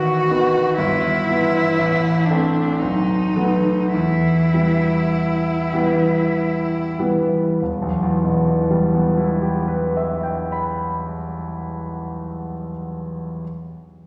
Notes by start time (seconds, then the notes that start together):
Already playing: D#3 B3 F#4
0.31 D#3 B3
0.77 G1 E4
1.29 E3 B3
1.78 A1
2.26 D4
2.30 A3 C4
2.79 B1 D#4
3.35 F#3 A3 B3
3.93 E2 E4
4.53 E3 G3 B3
5.73 E3 G3 B3
6.99 E3 G3 B3
7.61 E1
7.82 B1
8.03 E2
8.24 B2
8.47 E3
8.71 G3
8.94 B3
9.17 E4
9.42 G4
9.68 B4
9.97 E5
10.23 G5
10.52 B5